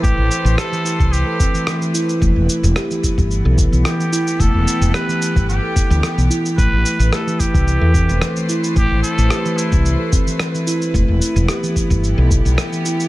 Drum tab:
SH |x-xxxxxxx-xxxxxx|x-xxxxxxx-xxxxxx|x-xxxxxxx-xxxxxx|x-xxxxxxx-xxxxxx|
SD |----r-------r---|----r-------r---|----r-------r---|----r-------r---|
BD |o------o--o-----|o-----oo--o-----|o------o--o-----|o-----oo--o-----|

SH |x-xxxxxxx-xxxxxx|x-xxxxxxx-xxxxxx|
SD |----r-------r---|----r-------r---|
BD |o------o--o-----|o-----oo--o-----|